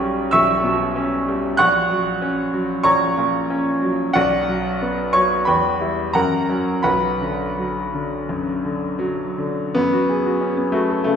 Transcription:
grand piano
Already playing: B1 C#4 C#5 G5 C#6
0.00 G3
0.31 B1 E5 C#6 E6
0.64 B2
0.96 C#4
1.28 G3
1.57 A#1 F#5 C#6 F#6
1.90 F#3
2.22 C#4
2.53 F#3
2.84 A#1 C#5 A#5 C#6
3.18 A#2
3.50 C#4
3.82 F#3
4.13 B1 F#4 D5 F#5
4.48 F#3
4.82 B3
5.13 F#3 C#5 C#6
5.45 E2 B4 G5 B5
5.80 G3 E4
6.13 F#2 A#4 F#5 A#5
6.49 F#3 C#4
6.83 B1 B4 F#5 B5
7.21 D3
7.58 F#3
7.94 D3
8.29 F#2
8.64 D3
8.99 F#3
9.38 D3
9.75 F#2 B3
9.93 F#4
10.09 G#4
10.26 F#4
10.41 C#4
10.57 B3
10.72 A3 F#4
10.90 A4
11.04 C#3 A3

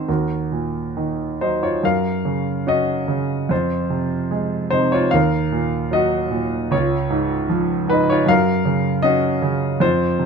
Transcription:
grand piano
Already playing: G#2 D#3 C4 D#4 C5
0.08 D#2 F#4 A#4
0.52 A#2
0.97 D#3
1.41 F#3 D#4 C5
1.63 F4 C#5
1.83 F#2 A#4 F5
2.25 C#3
2.67 C#4 F#4 D#5
3.08 C#3
3.49 F2 F4 C5
3.90 C3
4.31 G#3
4.70 C3 D#4 C5
4.92 F4 C#5
5.11 D#2 A#4 F5
5.52 A#2
5.91 F#3 F#4 D#5
6.31 A#2
6.71 C#2 F4 C#5
7.10 G#2
7.49 F3
7.88 G#2 B4
7.92 D#4
8.10 F4 C#5
8.26 F#2 F5
8.30 A#4
8.65 C#3
9.02 C#4 F#4 D#5
9.42 C#3
9.80 F2 F4 C5
10.19 C3

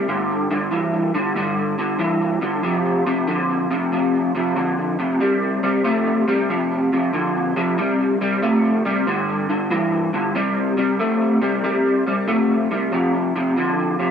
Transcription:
clean electric guitar
0.08 G2 D3
0.51 G2 D3
0.71 G2 E3
1.14 G2 D3
1.36 G2 D3
1.78 G2 D3
1.99 G2 E3
2.41 G2 D3
2.63 F2 C3
3.06 F2 C3
3.27 F2 D3
3.71 F2 C3
3.92 F2 C3
4.35 F2 C3
4.56 F2 D3
4.99 F2 C3
5.20 C3 G3
5.63 C3 G3
5.84 C3 A3
6.28 C3 G3
6.50 F2 C3
6.92 F2 C3
7.13 F2 D3
7.56 F2 C3
7.78 C3 G3
8.21 C3 G3
8.42 C3 A3
8.85 C3 G3
9.07 G2 D3
9.49 G2 D3
9.70 G2 E3
10.13 G2 D3
10.35 C3 G3
10.77 C3 G3
10.99 C3 A3
11.42 C3 G3
11.64 C3 G3
12.07 C3 G3
12.28 C3 A3
12.71 C3 G3
12.92 F2 C3
13.36 F2 C3
13.56 F2 D3
13.99 F2 C3

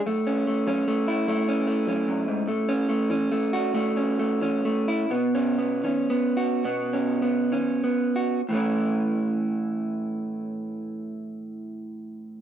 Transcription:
clean electric guitar
0.06 F#2 A3
0.27 C#4
0.47 A3
0.67 F#3 C#4
0.88 A3
1.08 E4
1.28 F#2 A3
1.48 C#4
1.67 A3
1.87 F#3 C#4
2.08 F#2
2.28 G#2
2.48 A2 A3
2.69 C#4
2.89 A3
3.10 E3 C#4
3.32 A3
3.53 F#4
3.74 A2 A3
3.97 C#4
4.19 A3
4.41 E3 C#4
4.65 A3
4.88 E4
5.11 B2 B3
5.35 C#4
5.59 B3
5.84 D#3 C#4
6.10 B3
6.37 F#4
6.65 B2 B3
6.93 C#4
7.22 B3
7.52 D#3 C#4
7.84 B3
8.16 F#4
8.49 A2 E3 A3
8.54 C#4 E4

